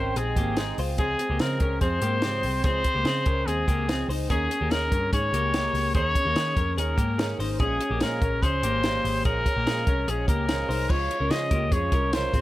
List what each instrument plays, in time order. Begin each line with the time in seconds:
Already playing: picked electric bass G#1, twelve-string acoustic guitar C4 D#4 G4, clean electric guitar C#4 A#4, trumpet C5
0.15 picked electric bass A#1, twelve-string acoustic guitar G#3 C4 D#4 G4, clean electric guitar C4 G#4, trumpet G#4, closed hi-hat
0.35 picked electric bass G#1, clean electric guitar A#3 G4, twelve-string acoustic guitar C4 D#4 G4, kick, closed hi-hat
0.57 twelve-string acoustic guitar G#3 C4 D#4 G4, clean electric guitar C4 G#4, snare, closed hi-hat
0.78 picked electric bass C#2, twelve-string acoustic guitar G#3 C4 G#4, clean electric guitar F4 C5, open hi-hat
0.98 twelve-string acoustic guitar C#3 F3 G#3 C4 G#4, clean electric guitar C4 G#4, trumpet G#4, kick, closed hi-hat
1.19 twelve-string acoustic guitar G#3 C4 G#4, closed hi-hat
1.30 picked electric bass C#2, clean electric guitar A#3 G4
1.39 twelve-string acoustic guitar C#3 F3 G#3 C4 G#4, picked electric bass C#3, clean electric guitar C4 G#4, trumpet A#4, snare, closed hi-hat
1.59 picked electric bass C#2, twelve-string acoustic guitar G#3 C4 G#4, clean electric guitar C#4 A#4, kick, closed hi-hat
1.81 picked electric bass F2, twelve-string acoustic guitar F3 G#3 C4 G#4, clean electric guitar C4 G#4, trumpet C5, kick, closed hi-hat
2.02 picked electric bass G#2, twelve-string acoustic guitar G#3 C4 G#4, clean electric guitar A#3 G4, closed hi-hat
2.22 twelve-string acoustic guitar C#3 F3 G#3 C4 G#4, clean electric guitar C4 G4, snare, closed hi-hat
2.43 picked electric bass C2, twelve-string acoustic guitar G#3 C4 G#4, open hi-hat
2.64 picked electric bass C#2, twelve-string acoustic guitar C#3 F3 G#3 C4 G#4, clean electric guitar C4 G#4, trumpet C5, kick, closed hi-hat
2.84 twelve-string acoustic guitar G#3 C4 G#4, kick, closed hi-hat
2.95 picked electric bass C#2, clean electric guitar A#3 G4
3.05 picked electric bass C#3, twelve-string acoustic guitar C#3 F3 G#3 C4 G#4, clean electric guitar C4 G#4, snare, closed hi-hat
3.26 picked electric bass C#2, twelve-string acoustic guitar G#3 C4 G#4, clean electric guitar C#4 A#4, kick, closed hi-hat
3.46 picked electric bass D#2, twelve-string acoustic guitar F3 G#3 C4 G#4, clean electric guitar C4 G#4, trumpet G#4, closed hi-hat
3.67 picked electric bass C#2, twelve-string acoustic guitar G#3 C4 G#4, clean electric guitar A#3 G4, kick, closed hi-hat
3.88 twelve-string acoustic guitar C#3 F3 G#3 C4 G#4, clean electric guitar C4 G#4, snare, closed hi-hat
4.08 picked electric bass C#2, twelve-string acoustic guitar G#3 C4 G#4, clean electric guitar D#4 C5, open hi-hat
4.29 picked electric bass D#2, twelve-string acoustic guitar D#3 A#3 C#4 G#4, clean electric guitar C#4 G#4, trumpet G#4, kick, closed hi-hat
4.49 twelve-string acoustic guitar G#4, closed hi-hat
4.61 picked electric bass D#2, clean electric guitar A#3 G4
4.70 picked electric bass D#2, twelve-string acoustic guitar D#3 A#3 C#4 G#4, clean electric guitar C#4 G#4, trumpet A#4, snare, closed hi-hat
4.91 picked electric bass G2, clean electric guitar C#4 A#4, twelve-string acoustic guitar G#4, kick, closed hi-hat
5.11 picked electric bass G#2, twelve-string acoustic guitar D#3 A#3 C#4 G#4, clean electric guitar C#4 G#4, trumpet C#5, kick, closed hi-hat
5.32 picked electric bass C#2, clean electric guitar A#3 G4, twelve-string acoustic guitar A#3 C#4 G#4, closed hi-hat
5.54 twelve-string acoustic guitar D#3 A#3 C#4 G#4, clean electric guitar A#3 G4, snare, closed hi-hat
5.73 picked electric bass C#2, twelve-string acoustic guitar C#4 G#4, open hi-hat
5.77 twelve-string acoustic guitar A#3
5.95 picked electric bass D#2, twelve-string acoustic guitar D#3 A#3 C#4 G#4, clean electric guitar C#4 G#4, trumpet C#5, kick, closed hi-hat
6.15 twelve-string acoustic guitar A#3 C#4 G#4, kick, closed hi-hat
6.25 picked electric bass D#2, clean electric guitar A#3 G4
6.36 picked electric bass D#3, twelve-string acoustic guitar D#3 A#3 C#4 G#4, clean electric guitar C#4 G#4, snare, closed hi-hat
6.55 picked electric bass F2, twelve-string acoustic guitar C#4 G#4, clean electric guitar C#4 A#4, kick, closed hi-hat
6.59 twelve-string acoustic guitar A#3
6.76 picked electric bass D#2, twelve-string acoustic guitar D#3 A#3 C#4 G#4, clean electric guitar C#4 G#4, trumpet A#4, closed hi-hat
6.97 picked electric bass G#2, clean electric guitar A#3 G4, twelve-string acoustic guitar A#3 C#4 G#4, kick, closed hi-hat
7.18 twelve-string acoustic guitar D#3 A#3 C#4 G#4, clean electric guitar C#4 G#4, snare, closed hi-hat
7.39 picked electric bass G#1, twelve-string acoustic guitar A#3 C#4 G#4, clean electric guitar D#4 C5, open hi-hat
7.60 picked electric bass A#1, twelve-string acoustic guitar A#2 F3 G#3 C#4 G#4, clean electric guitar C#4 G#4, trumpet G#4, kick, closed hi-hat
7.80 twelve-string acoustic guitar G#3 C#4 G#4, closed hi-hat
7.90 picked electric bass A#1, clean electric guitar A#3 G4
8.01 twelve-string acoustic guitar A#2 F3 G#3 C#4 G#4, picked electric bass A#2, clean electric guitar C#4 G#4, trumpet A#4, snare, closed hi-hat
8.22 picked electric bass A#1, clean electric guitar C#4 A#4, twelve-string acoustic guitar C#4 G#4, kick, closed hi-hat
8.26 twelve-string acoustic guitar G#3
8.42 picked electric bass C#2, twelve-string acoustic guitar F3 G#3 C#4 G#4, clean electric guitar C#4 G#4, trumpet C5, kick, closed hi-hat
8.63 picked electric bass G#1, twelve-string acoustic guitar G#3 C#4 G#4, clean electric guitar A#3 G4, closed hi-hat
8.83 twelve-string acoustic guitar A#2 F3 G#3 C#4 G#4, clean electric guitar A#3 G4, snare, closed hi-hat
9.03 picked electric bass G#1, twelve-string acoustic guitar G#3 C#4 G#4, open hi-hat
9.25 picked electric bass A#1, twelve-string acoustic guitar A#2 F3 G#3 C#4 G#4, clean electric guitar C#4 G#4, trumpet A#4, kick, closed hi-hat
9.45 twelve-string acoustic guitar G#3 C#4 G#4, kick, closed hi-hat
9.56 picked electric bass A#1, clean electric guitar A#3 G4
9.66 twelve-string acoustic guitar A#2 F3 G#3 C#4 G#4, picked electric bass A#2, clean electric guitar C#4 G#4, snare, closed hi-hat
9.86 picked electric bass C2, twelve-string acoustic guitar G#3 C#4 G#4, clean electric guitar C#4 A#4, kick, closed hi-hat
10.07 picked electric bass A#1, twelve-string acoustic guitar F3 G#3 C#4 G#4, clean electric guitar C#4 G#4, trumpet G#4, closed hi-hat
10.28 picked electric bass C#2, twelve-string acoustic guitar G#3 C#4 G#4, clean electric guitar A#3 G4, trumpet A#4, kick, closed hi-hat
10.48 twelve-string acoustic guitar A#2 F3 G#3 C#4 G#4, clean electric guitar C#4 G#4, snare, closed hi-hat
10.69 picked electric bass C2, twelve-string acoustic guitar G#3 C#4 G#4, clean electric guitar D#4 C5, open hi-hat
10.89 picked electric bass C#2, twelve-string acoustic guitar C#3 F3 G#3 C#4 F4, clean electric guitar F4 C#5, trumpet C#5, kick, crash
11.09 twelve-string acoustic guitar G#3 C#4 F4, closed hi-hat
11.20 picked electric bass C#2, clean electric guitar C#4 A#4
11.30 picked electric bass C#3, twelve-string acoustic guitar C#3 F3 G#3 C#4 F4, clean electric guitar C#4 G#4, trumpet D#5, snare, closed hi-hat
11.51 picked electric bass C#2, twelve-string acoustic guitar G#3 C#4 F4, clean electric guitar A#3 G4, kick, closed hi-hat
11.72 picked electric bass F2, twelve-string acoustic guitar F3 G#3 C#4 F4, clean electric guitar C#4 G#4, trumpet C#5, kick, closed hi-hat
11.92 picked electric bass C2, twelve-string acoustic guitar G#3 C#4 F4, clean electric guitar C#4 A#4, kick, closed hi-hat
12.13 twelve-string acoustic guitar C#3 F3 G#3 C#4 F4, clean electric guitar C#4 A#4, trumpet C5, snare, closed hi-hat
12.33 picked electric bass G#1, twelve-string acoustic guitar G#3 C#4 F4, clean electric guitar C4 G#4, kick, closed hi-hat